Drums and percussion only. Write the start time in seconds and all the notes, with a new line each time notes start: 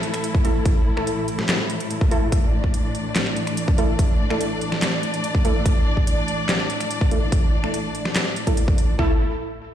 0.03 closed hi-hat
0.14 finger snap, closed hi-hat
0.24 closed hi-hat
0.35 kick
0.45 closed hi-hat
0.65 kick, closed hi-hat
0.97 finger snap
1.07 closed hi-hat
1.28 closed hi-hat
1.39 finger snap, snare
1.49 snare, clap, closed hi-hat
1.70 closed hi-hat
1.80 closed hi-hat
1.91 closed hi-hat
2.01 kick
2.11 closed hi-hat
2.32 kick, closed hi-hat
2.64 kick
2.74 closed hi-hat
2.95 closed hi-hat
3.16 snare, clap, closed hi-hat
3.26 finger snap
3.36 closed hi-hat
3.47 finger snap, closed hi-hat
3.57 closed hi-hat
3.68 kick
3.78 closed hi-hat
3.99 kick, closed hi-hat
4.30 finger snap
4.41 closed hi-hat
4.61 closed hi-hat
4.72 finger snap, snare
4.82 snare, clap, closed hi-hat
5.03 closed hi-hat
5.14 closed hi-hat
5.24 closed hi-hat
5.35 kick
5.45 closed hi-hat
5.66 kick, closed hi-hat
5.97 kick
6.07 closed hi-hat
6.28 closed hi-hat
6.49 snare, clap, closed hi-hat
6.60 finger snap
6.70 closed hi-hat
6.80 finger snap, closed hi-hat
6.91 closed hi-hat
7.01 kick
7.11 closed hi-hat
7.32 kick, closed hi-hat
7.64 finger snap
7.74 closed hi-hat
7.95 closed hi-hat
8.05 finger snap, snare
8.16 snare, clap, closed hi-hat
8.36 closed hi-hat
8.47 kick, closed hi-hat
8.57 closed hi-hat
8.68 kick
8.78 closed hi-hat
8.99 kick, floor tom